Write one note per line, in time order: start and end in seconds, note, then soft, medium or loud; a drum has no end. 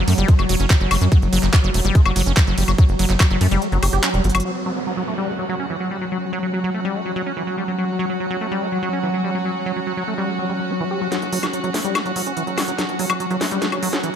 0.00 4.44 F#3 medium
0.08 0.14 F#2 loud
0.08 0.14 A3 medium
0.08 open hi-hat medium
0.08 ride medium
0.18 0.25 F#1 medium
0.18 0.30 G3 loud
0.18 closed hi-hat medium
0.28 0.35 A3 medium
0.28 kick loud
0.28 closed hi-hat medium
0.39 0.46 F#1 medium
0.39 0.45 F#3 medium
0.39 closed hi-hat soft
0.39 high woodblock soft
0.49 0.56 E1 loud
0.49 0.56 F#3 loud
0.49 open hi-hat loud
0.49 ride medium
0.60 0.66 F#1 medium
0.60 0.66 C#4 medium
0.60 closed hi-hat medium
0.70 0.76 E3 medium
0.70 kick loud
0.70 clap loud
0.70 closed hi-hat medium
0.81 0.87 F#1 medium
0.81 0.90 F#3 medium
0.81 closed hi-hat soft
0.91 0.98 F#1 loud
0.91 0.97 G3 medium
0.91 open hi-hat loud
0.91 ride medium
0.91 high woodblock medium
1.01 1.08 F#2 medium
1.01 1.05 F#3 medium
1.01 closed hi-hat medium
1.12 1.18 F#3 medium
1.12 kick loud
1.12 closed hi-hat medium
1.22 1.29 F#1 medium
1.22 closed hi-hat soft
1.33 1.39 F#1 loud
1.33 1.39 F#3 loud
1.33 open hi-hat loud
1.33 ride medium
1.43 1.50 F#1 loud
1.43 1.47 F#3 medium
1.43 clap soft
1.43 closed hi-hat medium
1.53 1.60 F#3 medium
1.53 kick loud
1.53 clap loud
1.53 closed hi-hat medium
1.53 high woodblock soft
1.64 1.71 F#1 medium
1.64 1.70 F#3 loud
1.64 closed hi-hat soft
1.74 1.81 E1 loud
1.74 1.80 A3 medium
1.74 open hi-hat medium
1.74 ride medium
1.85 1.91 F#1 medium
1.85 1.97 G3 loud
1.85 closed hi-hat medium
1.95 2.01 A3 medium
1.95 kick loud
1.95 closed hi-hat medium
2.05 2.12 F#1 medium
2.05 2.12 F#3 medium
2.05 closed hi-hat soft
2.05 high woodblock medium
2.16 2.23 F#1 loud
2.16 2.22 F#3 loud
2.16 open hi-hat loud
2.16 ride medium
2.26 2.33 F#1 medium
2.26 2.33 C#4 medium
2.26 closed hi-hat medium
2.37 2.43 E3 medium
2.37 kick loud
2.37 clap loud
2.37 closed hi-hat medium
2.47 2.54 F#1 medium
2.47 2.56 F#3 medium
2.47 closed hi-hat soft
2.58 2.64 F#1 loud
2.58 2.64 G3 medium
2.58 open hi-hat medium
2.58 ride medium
2.68 2.75 F#1 medium
2.68 2.72 F#3 medium
2.68 closed hi-hat medium
2.68 high woodblock soft
2.78 2.85 F#3 medium
2.78 kick loud
2.78 closed hi-hat medium
2.89 2.95 F#1 medium
2.89 closed hi-hat soft
2.99 3.06 F#1 loud
2.99 3.05 F#3 loud
2.99 open hi-hat loud
2.99 ride medium
3.10 3.16 F#1 medium
3.10 3.13 F#3 medium
3.10 clap soft
3.10 closed hi-hat medium
3.20 3.26 F#3 medium
3.20 kick loud
3.20 clap loud
3.20 closed hi-hat medium
3.20 high woodblock medium
3.31 3.37 F#1 medium
3.31 3.37 F#3 loud
3.31 closed hi-hat soft
3.41 3.48 F#2 loud
3.41 3.47 A3 medium
3.41 open hi-hat medium
3.41 ride medium
3.51 3.58 F#1 medium
3.51 3.63 G3 loud
3.51 closed hi-hat medium
3.62 3.68 A3 medium
3.62 closed hi-hat medium
3.72 3.79 F#1 medium
3.72 3.78 F#3 medium
3.72 closed hi-hat soft
3.83 3.89 F#1 loud
3.83 3.86 G4 medium
3.83 open hi-hat loud
3.83 ride medium
3.83 high woodblock soft
3.93 4.00 F#1 medium
3.93 4.02 G4 loud
3.93 closed hi-hat medium
4.03 4.10 C#4 medium
4.03 clap loud
4.03 closed hi-hat medium
4.14 4.21 E1 medium
4.14 4.26 G3 medium
4.14 closed hi-hat soft
4.24 4.31 G1 loud
4.24 4.28 F#3 medium
4.24 closed hi-hat medium
4.29 closed hi-hat medium
4.35 4.41 G1 medium
4.35 4.44 F#3 medium
4.35 closed hi-hat medium
4.35 high woodblock medium
4.40 closed hi-hat medium
4.45 11.11 F#3 medium
4.45 4.51 F#3 medium
4.45 14.15 C#4 medium
4.45 downlifter medium
4.66 4.72 F#3 loud
4.76 4.80 F#3 medium
4.82 14.15 F#5 medium
4.87 4.93 F#3 medium
4.97 5.03 F#3 loud
5.05 5.14 A3 medium
5.05 14.15 F#4 medium
5.18 5.30 G3 medium
5.28 5.35 A3 medium
5.39 5.45 F#3 medium
5.49 5.55 F#3 loud
5.60 5.66 C#4 medium
5.70 5.76 E3 medium
5.80 5.90 F#3 medium
5.91 5.97 G3 medium
6.01 6.05 F#3 medium
6.12 6.18 F#3 medium
6.33 6.39 F#3 loud
6.43 6.47 F#3 medium
6.53 6.60 F#3 medium
6.64 6.70 F#3 loud
6.74 6.80 A3 medium
6.85 6.97 G3 loud
6.95 7.01 A3 medium
7.06 7.12 F#3 medium
7.16 7.22 F#3 loud
7.26 7.33 C#4 medium
7.37 7.43 E3 medium
7.47 7.56 F#3 medium
7.58 7.64 G3 medium
7.68 7.72 F#3 medium
7.78 7.85 F#3 medium
7.99 8.05 F#3 loud
8.10 8.13 F#3 medium
8.20 8.26 F#3 medium
8.31 8.37 F#3 loud
8.41 8.47 A3 medium
8.51 8.63 G3 loud
8.62 8.68 A3 medium
8.72 8.78 F#3 medium
8.83 8.89 F#3 loud
8.93 8.99 C#4 medium
9.03 9.10 E3 medium
9.14 9.23 F#3 medium
9.24 9.30 G3 medium
9.35 9.38 F#3 medium
9.45 9.51 F#3 medium
9.66 9.72 F#3 loud
9.76 9.80 F#3 medium
9.87 9.93 F#3 medium
9.97 10.03 F#3 loud
10.08 10.14 A3 medium
10.18 10.30 G3 loud
10.28 10.35 A3 medium
10.39 10.45 F#3 medium
10.49 10.53 G3 medium
10.60 10.72 F#3 medium
10.70 10.74 F#4 medium
10.81 10.84 E3 loud
10.91 11.00 G4 loud
11.01 11.08 F#3 medium
11.12 14.15 F#3 medium
11.12 11.18 F#3 medium
11.12 snare soft
11.12 closed hi-hat medium
11.22 11.29 F#1 medium
11.22 closed hi-hat soft
11.33 11.39 F#1 loud
11.33 11.39 F#3 loud
11.33 open hi-hat loud
11.43 11.50 F#1 medium
11.43 11.47 F#3 medium
11.43 snare soft
11.43 closed hi-hat medium
11.43 high woodblock soft
11.53 11.60 F#3 medium
11.53 closed hi-hat medium
11.64 11.70 F#1 medium
11.64 11.70 F#3 loud
11.64 closed hi-hat soft
11.74 11.81 E1 loud
11.74 11.80 A3 medium
11.74 snare medium
11.74 open hi-hat medium
11.85 11.91 F#1 medium
11.85 11.97 G3 loud
11.85 closed hi-hat medium
11.95 12.01 A3 medium
11.95 snare medium
11.95 closed hi-hat medium
11.95 high woodblock medium
12.06 12.12 F#1 medium
12.06 12.12 F#3 medium
12.06 closed hi-hat soft
12.16 12.23 F#1 loud
12.16 12.22 F#3 loud
12.16 open hi-hat loud
12.26 12.33 F#1 medium
12.26 12.33 C#4 medium
12.26 closed hi-hat medium
12.37 12.43 E3 medium
12.37 closed hi-hat medium
12.47 12.54 F#1 medium
12.47 12.56 F#3 medium
12.47 closed hi-hat soft
12.58 12.64 F#1 medium
12.58 12.64 G3 medium
12.58 snare medium
12.58 open hi-hat loud
12.58 high woodblock soft
12.68 12.75 F#1 medium
12.68 12.72 F#3 medium
12.68 closed hi-hat medium
12.78 12.85 F#3 medium
12.78 snare medium
12.78 closed hi-hat medium
12.89 12.95 F#1 medium
12.89 closed hi-hat soft
12.99 13.06 F#1 medium
12.99 13.05 F#3 loud
12.99 open hi-hat loud
13.10 13.16 F#1 loud
13.10 13.13 F#3 medium
13.10 closed hi-hat soft
13.10 high woodblock medium
13.20 13.26 F#3 medium
13.20 closed hi-hat medium
13.30 13.37 F#1 medium
13.30 13.37 F#3 loud
13.30 closed hi-hat soft
13.41 13.48 F#2 loud
13.41 13.47 A3 medium
13.41 snare medium
13.41 open hi-hat medium
13.51 13.58 F#1 medium
13.51 13.63 G3 loud
13.51 closed hi-hat medium
13.62 13.68 A3 medium
13.62 snare medium
13.62 closed hi-hat medium
13.72 13.79 F#1 medium
13.72 13.78 F#3 medium
13.72 closed hi-hat soft
13.72 high woodblock soft
13.83 13.89 E1 loud
13.83 13.89 F#3 loud
13.83 open hi-hat loud
13.93 14.00 F#1 medium
13.93 13.99 C#4 medium
13.93 snare medium
13.93 closed hi-hat medium
14.03 14.10 E3 medium
14.03 closed hi-hat medium